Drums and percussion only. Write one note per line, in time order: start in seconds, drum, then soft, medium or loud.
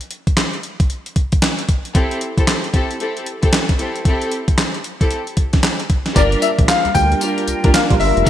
0.01 closed hi-hat soft
0.11 closed hi-hat medium
0.27 kick medium
0.27 closed hi-hat soft
0.37 snare loud
0.37 clap medium
0.37 closed hi-hat medium
0.53 closed hi-hat soft
0.63 closed hi-hat medium
0.80 kick loud
0.80 closed hi-hat medium
0.90 closed hi-hat medium
1.06 closed hi-hat soft
1.16 kick medium
1.16 closed hi-hat medium
1.32 kick medium
1.32 closed hi-hat medium
1.42 snare loud
1.42 clap medium
1.42 closed hi-hat medium
1.59 closed hi-hat medium
1.69 kick medium
1.69 closed hi-hat medium
1.85 closed hi-hat soft
1.95 kick loud
1.95 closed hi-hat medium
2.11 closed hi-hat medium
2.21 closed hi-hat medium
2.38 kick medium
2.38 closed hi-hat medium
2.47 snare loud
2.47 clap medium
2.47 closed hi-hat medium
2.64 closed hi-hat soft
2.74 kick medium
2.74 closed hi-hat medium
2.91 closed hi-hat soft
3.00 closed hi-hat medium
3.17 closed hi-hat soft
3.26 closed hi-hat medium
3.43 kick medium
3.43 closed hi-hat medium
3.53 snare loud
3.53 clap medium
3.53 closed hi-hat medium
3.69 kick medium
3.69 closed hi-hat medium
3.79 closed hi-hat medium
3.96 closed hi-hat soft
4.05 kick loud
4.05 closed hi-hat medium
4.22 closed hi-hat medium
4.32 closed hi-hat medium
4.48 kick medium
4.48 closed hi-hat soft
4.58 snare loud
4.58 clap medium
4.58 closed hi-hat medium
4.75 closed hi-hat soft
4.84 closed hi-hat medium
5.01 kick medium
5.01 closed hi-hat medium
5.11 closed hi-hat medium
5.27 closed hi-hat soft
5.37 kick medium
5.37 closed hi-hat medium
5.53 kick medium
5.53 snare medium
5.53 closed hi-hat medium
5.63 snare loud
5.63 clap medium
5.63 closed hi-hat medium
5.80 closed hi-hat medium
5.90 kick medium
5.90 closed hi-hat medium
6.06 snare medium
6.06 closed hi-hat soft
6.16 kick loud
6.16 closed hi-hat medium
6.16 tambourine medium
6.32 closed hi-hat medium
6.42 closed hi-hat medium
6.42 tambourine medium
6.59 kick loud
6.59 closed hi-hat medium
6.68 snare loud
6.68 clap medium
6.68 closed hi-hat medium
6.68 tambourine loud
6.85 closed hi-hat soft
6.95 kick medium
6.95 open hi-hat medium
6.95 tambourine medium
7.12 closed hi-hat medium
7.21 closed hi-hat medium
7.21 tambourine medium
7.38 closed hi-hat medium
7.48 closed hi-hat medium
7.48 tambourine medium
7.64 kick loud
7.64 closed hi-hat medium
7.74 snare loud
7.74 clap loud
7.74 closed hi-hat medium
7.74 tambourine loud
7.90 kick loud
7.90 closed hi-hat medium
8.01 open hi-hat medium
8.17 closed hi-hat soft
8.27 kick loud
8.27 closed hi-hat medium
8.27 tambourine medium